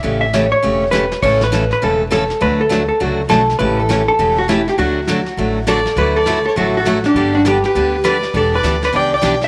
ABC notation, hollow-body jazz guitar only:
X:1
M:4/4
L:1/8
Q:"Swing" 1/4=202
K:D
V:1 name="Hollow-body jazz guitar"
e e c c3 B2 | c B2 B A z A2 | B A2 A F z A2 | B A2 A2 F E G |
F6 A2 | B A2 A F F2 D- | D D G G3 B2 | A B2 B d d2 e |]